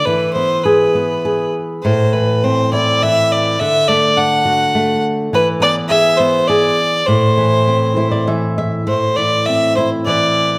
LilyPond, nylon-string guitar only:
\new Staff \with { instrumentName = "Nylon-string guitar" } { \time 3/4 \key a \minor \tempo 4 = 102 << { r2. | r2. | r2. | r2. |
r4. c''16 d''16 e''8 e''8 | r2. | } \\ { e8 b8 gis'8 b8 gis'4 | a,8 e8 c'8 e'8 e4 | d8 a8 d'8 fis'8 a4 | e8 b8 gis'8 b8 gis'4 |
a,8 e8 c'8 e'8 e4 | a,8 e8 c'8 e'8 e4 | } >> }